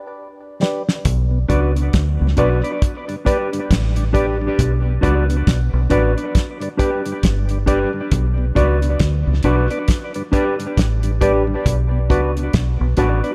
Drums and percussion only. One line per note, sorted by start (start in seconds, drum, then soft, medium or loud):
0.63 snare medium
0.89 snare medium
1.05 kick loud
1.05 closed hi-hat loud
1.50 kick loud
1.50 closed hi-hat medium
1.76 closed hi-hat soft
1.93 kick loud
1.93 snare loud
1.93 closed hi-hat medium
2.37 kick medium
2.37 closed hi-hat medium
2.64 closed hi-hat soft
2.82 kick loud
2.82 closed hi-hat medium
3.09 closed hi-hat soft
3.26 kick medium
3.26 closed hi-hat medium
3.53 closed hi-hat medium
3.71 kick loud
3.71 snare loud
3.71 closed hi-hat medium
3.96 closed hi-hat medium
4.15 kick loud
4.15 closed hi-hat medium
4.59 kick loud
4.59 closed hi-hat loud
5.03 kick loud
5.03 closed hi-hat medium
5.30 closed hi-hat soft
5.47 kick loud
5.47 snare loud
5.47 closed hi-hat medium
5.90 kick medium
5.90 closed hi-hat medium
6.18 closed hi-hat soft
6.35 kick loud
6.35 snare medium
6.35 closed hi-hat medium
6.61 closed hi-hat soft
6.79 kick medium
6.79 closed hi-hat medium
7.06 closed hi-hat medium
7.23 kick loud
7.23 snare loud
7.23 closed hi-hat medium
7.49 closed hi-hat medium
7.67 kick loud
7.67 closed hi-hat medium
8.12 kick loud
8.12 closed hi-hat loud
8.56 kick loud
8.56 closed hi-hat medium
8.82 closed hi-hat soft
8.99 kick loud
8.99 snare loud
8.99 closed hi-hat medium
9.43 kick medium
9.43 closed hi-hat medium
9.70 closed hi-hat soft
9.88 kick loud
9.88 snare medium
9.88 closed hi-hat medium
10.14 closed hi-hat soft
10.33 kick medium
10.33 closed hi-hat medium
10.60 closed hi-hat medium
10.77 kick loud
10.77 snare loud
10.77 closed hi-hat medium
11.03 closed hi-hat soft
11.21 kick loud
11.21 closed hi-hat medium
11.66 kick loud
11.66 closed hi-hat loud
12.10 kick loud
12.10 closed hi-hat medium
12.37 closed hi-hat soft
12.53 kick loud
12.53 snare loud
12.53 closed hi-hat medium
12.97 kick medium
12.97 closed hi-hat medium
13.24 closed hi-hat soft